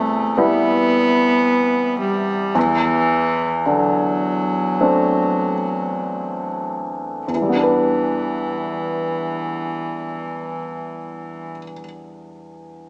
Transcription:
Already playing: grand piano E2 C3, cello A3
0.38 grand piano G3 B3 E4, cello B3
2.01 cello G3
2.55 grand piano E2, cello E3
3.65 grand piano D3, cello F#3
4.81 grand piano A3 C4 D4
7.27 grand piano E2, cello E3
7.35 grand piano E3
7.42 grand piano G3
7.49 grand piano B3
7.56 grand piano D4
7.63 grand piano B4

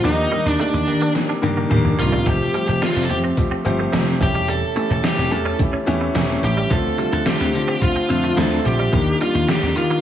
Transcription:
0.03 slap bass D#2, grand piano D#3 A#3 D4 G4, clean electric guitar F3, lead electric guitar D#4
0.31 grand piano D#3 A#3 D4 G4, clean electric guitar G3
0.46 slap bass D#2, lead electric guitar D4, muted clean electric guitar stroke
0.59 grand piano D#3 A#3 D4 G4, clean electric guitar A3, lead electric guitar D4
0.73 slap bass D#2, muted clean electric guitar stroke
0.87 grand piano D#3 A#3 D4 G4, slap bass D#3
1.02 clean electric guitar A#3
1.14 grand piano D#3 A#3 D4 G4, snare
1.29 clean electric guitar D4
1.42 slap bass G2, grand piano D#3 A#3 D4 G4, muted clean electric guitar stroke, high tom
1.57 clean electric guitar A#3
1.70 slap bass D#2, grand piano D#3 A#3 D4 G4, clean electric guitar A3, mid tom
1.85 mid tom
1.98 slap bass C2, grand piano D#3 A#3 D4 F4, lead electric guitar F4, muted clean electric guitar stroke, floor tom
2.12 clean electric guitar G3, floor tom
2.25 slap bass F1, grand piano F3 A3 C4 G4, clean electric guitar F3, lead electric guitar G4, kick, closed hi-hat
2.54 grand piano F3 A3 C4 G4, clean electric guitar G3, closed hi-hat
2.68 slap bass F1, lead electric guitar G4, muted clean electric guitar stroke
2.81 grand piano F3 A3 C4 G4, clean electric guitar A3, lead electric guitar F4, snare, closed hi-hat
2.96 slap bass F1, muted clean electric guitar stroke
3.04 lead electric guitar A4
3.09 slap bass F2, grand piano F3 A3 C4 G4, lead electric guitar G4, closed hi-hat
3.24 clean electric guitar C4
3.37 grand piano F3 A3 C4 G4, kick, closed hi-hat
3.51 clean electric guitar C4
3.65 slap bass G1, grand piano F3 A3 C4 G4, muted clean electric guitar stroke, closed hi-hat
3.79 clean electric guitar A3
3.92 slap bass F1, grand piano F3 A3 C4 G4, clean electric guitar A3, snare, closed hi-hat
4.20 slap bass E1, grand piano E3 A3 C#4 G4, lead electric guitar G4, muted clean electric guitar stroke, kick, closed hi-hat
4.35 clean electric guitar G3
4.48 clean electric guitar G3, lead electric guitar A4, closed hi-hat
4.75 grand piano E3 A3 C#4 G4, clean electric guitar A3, closed hi-hat
4.90 slap bass E1, lead electric guitar A4, muted clean electric guitar stroke
5.03 grand piano E3 A3 C#4 G4, clean electric guitar A3, lead electric guitar G4, snare, closed hi-hat
5.18 slap bass E1, muted clean electric guitar stroke
5.31 slap bass E2, grand piano E3 A3 C#4 G4, lead electric guitar A4, closed hi-hat
5.45 clean electric guitar C#4
5.59 grand piano E3 A3 C#4 G4, kick, closed hi-hat
5.73 clean electric guitar C#4
5.86 slap bass E2, grand piano E3 A3 C#4 G4, muted clean electric guitar stroke, closed hi-hat
6.01 clean electric guitar A3
6.14 slap bass E1, grand piano E3 A3 C#4 G4, clean electric guitar A3, snare, closed hi-hat
6.42 slap bass A1, grand piano E3 A3 C#4 G4, lead electric guitar G4, muted clean electric guitar stroke, closed hi-hat
6.57 clean electric guitar G3
6.70 slap bass D2, grand piano D3 A3 C4 F4, clean electric guitar F3, lead electric guitar A4, kick, closed hi-hat
6.98 grand piano D3 A3 C4 F4, clean electric guitar G3, closed hi-hat
7.13 slap bass D2, lead electric guitar A4, muted clean electric guitar stroke
7.25 grand piano D3 A3 C4 F4, clean electric guitar A3, lead electric guitar G4, snare, closed hi-hat
7.40 slap bass D2, muted clean electric guitar stroke
7.53 grand piano D3 A3 C4 F4, slap bass D3, closed hi-hat
7.68 clean electric guitar C4
7.80 grand piano D3 A3 C4 F4, lead electric guitar F4, kick, closed hi-hat
7.96 clean electric guitar C4
8.08 slap bass F2, grand piano D3 A3 C4 F4, muted clean electric guitar stroke, closed hi-hat
8.24 clean electric guitar A3
8.36 slap bass D2, grand piano D3 A3 C4 F4, clean electric guitar A3, lead electric guitar A4, snare, closed hi-hat
8.64 slap bass A#1, grand piano D3 A3 C4 F4, lead electric guitar G4, muted clean electric guitar stroke, closed hi-hat
8.79 clean electric guitar G3
8.92 slap bass D#2, grand piano D#3 A#3 D4 G4, clean electric guitar F3, kick, closed hi-hat
9.20 grand piano D#3 A#3 D4 G4, clean electric guitar G3, lead electric guitar F4, closed hi-hat
9.34 slap bass D#2, muted clean electric guitar stroke
9.47 grand piano D#3 A#3 D4 G4, clean electric guitar A3, lead electric guitar G4, snare, closed hi-hat
9.62 slap bass D#2, muted clean electric guitar stroke
9.75 grand piano D#3 A#3 D4 G4, slap bass D#3, lead electric guitar F4, closed hi-hat
9.90 clean electric guitar A#3

